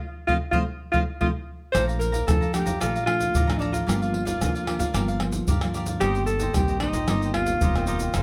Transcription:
0.28 F3 A3 C4 F4 C5 D#5 F5, surdo
0.51 F3 A3 C4 F4 C5 D#5 F5, surdo
0.92 F3 A3 C4 F4 C5 D#5 F5, surdo
1.21 F3 A3 C4 F4 C5 D#5 F5, surdo
1.72 A#1 A#2 F3 A3 D4 A4 C5 D5 F5 A#5, pandeiro, tamborim, shaker, surdo
1.87 D5 F5 A#5, pandeiro, shaker
1.99 A#4, muted cavaquinho stroke, pandeiro, shaker
2.12 D5 F5 A#5, pandeiro, shaker, surdo
2.27 F2 F3 A3 D4 A4, pandeiro, tamborim, shaker, surdo
2.41 D5 F5 A#5, pandeiro, shaker
2.53 F3 A3 D4 G4 A4 D5 F5 A#5, pandeiro, tamborim, shaker
2.66 F2 D5 F5 A#5, pandeiro, shaker, surdo
2.80 A#1 A#2 F3 A3 D4 F4 A4 D5 F5 A#5, pandeiro, tamborim, shaker, surdo
2.95 D5 F5 A#5, pandeiro, shaker
3.06 F3 A3 D4 F4, muted cavaquinho stroke, pandeiro, tamborim
3.21 pandeiro, shaker, surdo
3.34 A1 F2 A4 D5 F5 A#5, pandeiro, shaker, surdo
3.47 F3 A3 D4 D5 F5 A#5, pandeiro, tamborim, shaker
3.57 D4 D#4 A4 D5 F5
3.61 A#5, pandeiro
3.72 F4 D5 F5 A#5, pandeiro, shaker, surdo
3.87 G1 G2 F3 A#3 D4 G4 A#4 D5 F5, pandeiro, tamborim, shaker, surdo
4.02 A#4 D5 F5, pandeiro, shaker
4.14 muted cavaquinho stroke, pandeiro
4.25 A#4 D5 F5, pandeiro, shaker, surdo
4.41 D2 D3 F3 A#3 D4, pandeiro, tamborim, shaker, surdo
4.55 A#4 D5 F5, pandeiro, shaker
4.67 F3 A#3 D4 G4 A#4 D5 F5, pandeiro, tamborim
4.79 D2 A#4 D5 F5, pandeiro, shaker, surdo
4.94 G1 G2 F3 A#3 D4 G4 A#4 D5 F5, pandeiro, tamborim, shaker, surdo
5.08 A#4 D5 F5, pandeiro, shaker
5.20 F3 A#3 D4, muted cavaquinho stroke, pandeiro, tamborim
5.32 pandeiro, shaker, surdo
5.48 G2 D3 G4 A#4 D5 F5, pandeiro, shaker, surdo
5.61 F3 A#3 A#4 D5 F5, pandeiro, tamborim, shaker
5.65 D4
5.74 G4 A#4 D5 F5, pandeiro, shaker
5.86 A#4 D5 F5, pandeiro, shaker, surdo
6.00 G1 G2 D#3 A#3 C4 D#4 G4 C5, pandeiro, tamborim, shaker, surdo
6.05 D#5
6.15 G4 C5 D#5, pandeiro, shaker
6.26 A4, muted cavaquinho stroke, pandeiro, shaker
6.40 G4 C5 D#5, pandeiro, shaker, surdo
6.54 A#1 G2 D#3 A#3 C4 G4, pandeiro, tamborim, shaker, surdo
6.68 G4 C5 D#5, pandeiro, shaker
6.80 D#3 A#3 C4 D#4 G4 C5 D#5, pandeiro, tamborim
6.93 A#1 G4 C5 D#5, pandeiro, shaker, surdo
7.08 G1 G2 D#3 A#3 C4 D#4 G4 C5 D#5, pandeiro, tamborim, shaker, surdo
7.22 G4 C5 D#5, pandeiro, shaker
7.34 D#3 A#3 C4 F4, muted cavaquinho stroke, pandeiro, tamborim, surdo
7.46 D#3 A#3 C4, pandeiro, shaker, surdo
7.61 E1 G2 D#4 G4 C5 D#5, pandeiro, shaker, surdo
7.75 D#3 A#3 C4 G4 C5 D#5, pandeiro, tamborim, shaker
7.87 D#4 F4 G4 C5 D#5, pandeiro, shaker
7.99 G4 D#5, pandeiro, shaker, surdo
8.14 F1 F2 D#3 A3 C4 D#4 A4 C5 F5, pandeiro, tamborim, shaker, surdo

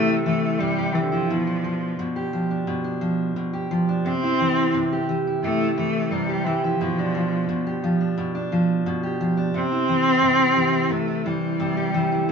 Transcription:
Already playing: C3 E3 A3 G4
0.09 E4
0.26 E3 A3
0.59 C3 G3
0.78 G4
0.94 E3
1.01 D3 E3
1.10 F3 E4
1.30 B2
1.47 D4
1.64 F3
1.99 B2
2.16 G4
2.33 F3
2.51 D4
2.67 B2
2.84 D4
3.01 F3
3.36 B2
3.53 G4
3.71 F3
3.89 D4
4.05 C3 C4
4.23 E4
4.40 E3
4.74 C3
4.93 G4
5.09 E3
5.27 E4
5.43 C3 A3
5.61 E4
5.78 E3 A3
6.11 C3 G3
6.29 G4
6.46 E3
6.63 F3 E4
6.81 B2
6.99 D4
7.15 F3
7.49 B2
7.67 G4
7.84 F3
8.01 D4
8.18 B2
8.35 D4
8.52 F3
8.86 B2
9.03 G4
9.21 F3
9.37 D4
9.54 C3 C4
9.72 E4
9.89 E3
10.22 C3
10.39 G4
10.56 E3
10.73 E4
10.90 C3 A3
11.08 E4
11.26 E3 G3
11.60 C3
11.77 G4
11.94 E3
12.12 E4
12.29 B2

